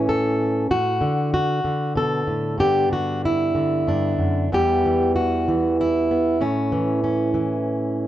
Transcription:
steel-string acoustic guitar
Already playing: A2 E3 C#4
0.09 A4
0.71 A2 F#4
1.01 D3
1.34 F#4
1.64 D3
1.95 B2 A4
2.27 A2
2.58 G2 D3 B3 D4 G4
2.90 D3 F#4
3.25 E4
3.55 D3
3.87 G2 D4
4.19 F#2
4.52 E2 E3 G3 B3 G4
4.86 E3
5.16 F#4
5.48 E3
5.81 E4
6.11 B3
6.41 A2 C#4
6.72 E3
7.04 C#4
7.34 E3

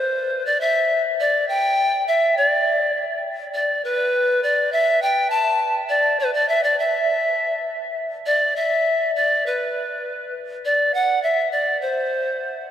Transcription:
pan flute
Already playing: C5
0.46 D5
0.61 E5
1.20 D5
1.49 G5
2.08 E5
2.37 D5
3.54 D5
3.84 B4
4.43 D5
4.72 E5
5.02 G5
5.30 A5
5.89 D5
6.20 B4
6.34 D5
6.49 E5
6.64 D5
6.79 E5
8.26 D5
8.56 E5
9.16 D5
9.46 B4
10.65 D5
10.94 F#5
11.23 E5
11.52 D5
11.81 C5

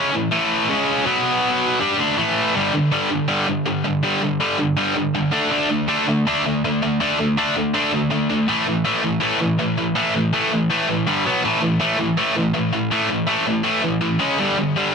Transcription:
distorted electric guitar
Already playing: C#3 G#3 C#4
0.12 A2 E3
0.31 A2 E3 A3
0.69 C#3 G#3 C#4
1.06 B2 F#3 B3
1.81 G3 D4 G4
1.99 D3 A3 D4
2.17 A2 E3 A3
2.55 G2 D3 G3
2.73 G2 D3
2.92 G2 D3 G3
3.10 G2 D3
3.28 G2 D3 G3
3.48 G2 D3
3.66 G2 D3
3.84 G2 D3
4.03 G2 D3 G3
4.21 G2 D3
4.40 G2 D3 G3
4.58 G2 D3
4.77 G2 D3 G3
4.96 G2 D3
5.15 G2 D3
5.32 D3 A3 D4
5.51 D3 A3 D4
5.70 D3 A3
5.88 D3 A3 D4
6.08 D3 A3
6.27 D3 A3 D4
6.45 D3 A3
6.64 D3 A3
6.82 D3 A3
7.00 D3 A3 D4
7.19 D3 A3
7.38 D3 A3 D4
7.57 D3 A3
7.74 D3 A3 D4
7.92 D3 A3
8.11 D3 A3
8.30 D3 A3
8.48 A2 E3 A3
8.66 A2 E3
8.85 A2 E3 A3
9.03 A2 E3
9.20 A2 E3 A3
9.40 A2 E3
9.59 A2 E3
9.78 A2 E3
9.95 A2 E3 A3
10.14 A2 E3
10.33 A2 E3 A3
10.52 A2 E3
10.70 A2 E3 A3
10.89 A2 E3
11.07 G2 D3 G3
11.25 B2 F#3 B3
11.44 A2 E3 A3
11.62 A2 E3
11.80 A2 E3 A3
11.98 A2 E3
12.17 A2 E3 A3
12.36 A2 E3
12.54 A2 E3
12.73 A2 E3
12.91 A2 E3 A3
13.10 A2 E3
13.27 A2 E3 A3
13.47 A2 E3
13.64 A2 E3 A3
13.82 A2 E3
14.01 A2 E3
14.19 C#3 G#3 C#4
14.38 G2 D3 G3
14.57 G2 D3
14.76 G2 D3 G3

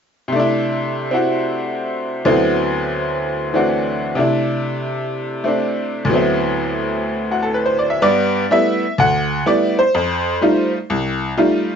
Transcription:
honky-tonk piano
0.28 C3
0.32 A3 D4
0.40 E4
1.11 C4 E4 F#4
2.25 D2 D3 F#3 B3 C4 E4
3.53 E3 A3 C4 D4 F#4
4.15 C3 A3 D4
4.20 E4
5.44 A3 C4 D4
6.05 D2 A2
6.10 F#3 B3 C4
6.16 E4
7.31 F#4
7.42 A4
7.54 B4
7.66 C5
7.79 D5
7.90 E5
8.02 G2 B3 D5
8.51 G3 A3 B3 E4 E5
8.98 D2 F#5
9.46 G3 A3 B3 E4 D5
9.79 C5
9.95 F2
10.41 G3 A3 D#4 F4
10.90 C2
11.37 G3 A3 D#4 F4

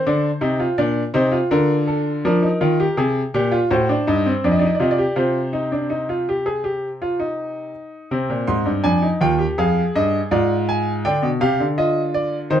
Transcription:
grand piano
Already playing: C5
0.07 D3 D4
0.41 C3 D#4
0.60 F4
0.78 A#2 D4 D5
1.14 C3 D#4 C5
1.32 F4
1.51 D3 A#4
1.87 A4
2.25 F3 D4 A#4
2.42 D#4
2.61 D#3 F4
2.80 G4
2.97 C3 G#4
3.34 A#2 G4
3.52 F4
3.71 A2 F#4 C5
3.89 D4
4.07 G2 D#4
4.26 C4
4.44 F2 D4 D5
4.51 D#5
4.59 D#4 D5
4.66 D#5
4.75 D5
4.80 C3 F4 D#5
4.91 D5
4.98 G4
5.16 C3 F4 C5
5.53 D#4
5.72 D4
5.90 D#4
6.09 F4
6.29 G4
6.46 G#4
6.64 G4
7.02 F4
7.20 D#4
8.11 C3 C4
8.30 A#2
8.47 G#2 C6
8.66 G2
8.84 F2 D4 G#5
9.02 D#4
9.21 D#2 F4 G5
9.38 G4
9.58 F2 G#4 F5
9.95 G2 D#5
10.31 G#2 F4 D5
10.69 G#5
11.05 D3 D4 G5
11.22 B2
11.41 C3 G4 F5
11.60 D3
11.78 F4 D#5
12.14 D5
12.50 D#3 D#4 C5

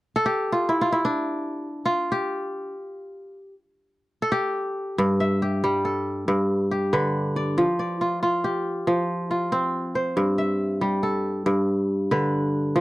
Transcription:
kora
0.16 A4
0.26 G4
0.52 F4
0.69 E4
0.81 F4
0.92 E4
1.05 D4
1.85 F4
2.12 G4
4.22 A4
4.32 G4
4.98 G2
5.20 E5
5.42 G4
5.64 G3
5.85 A4
6.28 G2
6.71 G4
6.93 D3 B4
7.36 D5
7.58 F3
7.79 D5
8.01 F4
8.23 F4
8.44 G4
8.87 F3
9.31 F4
9.52 C4
9.95 C5
10.17 G2
10.38 E5
10.81 G3
11.03 A4
11.46 G2
12.11 D3 B4
12.76 F3

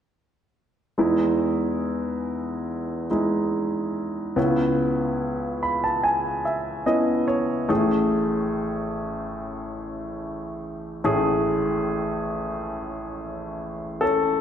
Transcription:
grand piano
0.98 E2 E3 G#3 D#4 E4
3.11 G#3 D#4 E4
4.36 C#2 C#3 B3 C#4 E4
5.63 B5
5.84 A5
6.03 G#5
6.45 E5
6.86 B3 C#4 E4 D#5
7.28 C#5
7.69 A1 A2 A3 C#4 G#4
11.04 A1 A2 A3 C#4 G#4
14.01 C#4 A4

